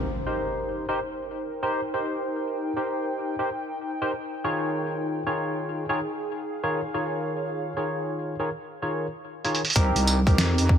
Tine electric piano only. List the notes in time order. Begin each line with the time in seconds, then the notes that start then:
0.27 D#4 G4 A#4 C5
0.89 D#4 G4 A#4 C5
1.63 D#4 G4 A#4 C5
1.94 D#4 G4 A#4 C5
2.77 D#4 G4 A#4 C5
3.39 D#4 G4 A#4 C5
4.02 D#4 G4 A#4 C5
4.44 D#3 F4 G#4 A#4 C#5
5.27 D#3 F4 G#4 A#4 C#5
5.89 D#3 F4 G#4 A#4 C#5
6.64 D#3 F4 G#4 A#4 C#5
6.94 D#3 F4 G#4 A#4 C#5
7.77 D#3 F4 G#4 A#4 C#5
8.40 D#3 F4 G#4 A#4 C#5
8.82 D#3 F4 G#4 A#4 C#5
9.44 D#3 F4 G#4 A#4 C#5
9.76 C4 D#4 G4 A#4
10.27 C4 D#4 G4 A#4